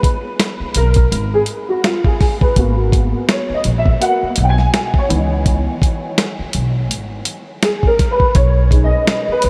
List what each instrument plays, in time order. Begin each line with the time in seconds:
Already playing: grand piano G#3 B3 D#4 F4 B4
0.03 kick, closed hi-hat
0.40 snare, closed hi-hat
0.60 muted upright bass stroke
0.74 upright bass B1, grand piano A#4, closed hi-hat
0.94 kick, closed hi-hat
1.12 upright bass G#1, closed hi-hat
1.34 grand piano G#4
1.46 closed hi-hat
1.69 grand piano F#4
1.84 grand piano F4, snare, closed hi-hat
2.04 grand piano G#4, kick
2.20 kick, snare, open hi-hat
2.41 grand piano B4, kick
2.56 upright bass G#1, grand piano A#3 B3 F#4, kick, closed hi-hat
2.92 kick, closed hi-hat
3.29 grand piano C#5, snare, closed hi-hat
3.50 muted upright bass stroke
3.54 grand piano D#5
3.64 upright bass A#1, closed hi-hat
3.78 grand piano E5
3.86 kick
4.00 grand piano A#3 B3 F#4 F#5, closed hi-hat
4.23 muted upright bass stroke
4.36 upright bass B1, closed hi-hat
4.44 grand piano G5
4.49 grand piano G#5
4.58 snare
4.74 snare, closed hi-hat
4.94 kick
4.98 grand piano C#5
5.09 upright bass C#2, grand piano E3 B3 D#4, closed hi-hat
5.46 kick, closed hi-hat
5.82 kick, closed hi-hat
6.18 snare, closed hi-hat
6.39 muted upright bass stroke
6.53 upright bass B1, closed hi-hat
6.91 upright bass G#1, closed hi-hat
7.25 closed hi-hat
7.63 grand piano G#4, snare, closed hi-hat
7.83 kick
7.87 grand piano A#4
7.99 kick, snare, closed hi-hat
8.11 grand piano B4
8.20 kick
8.35 upright bass B1, grand piano C#5, kick, closed hi-hat
8.71 grand piano G#3 C#4 D#4, kick, closed hi-hat
8.84 grand piano D#5
9.07 snare, closed hi-hat
9.28 muted upright bass stroke
9.32 grand piano B4
9.42 upright bass C#2, closed hi-hat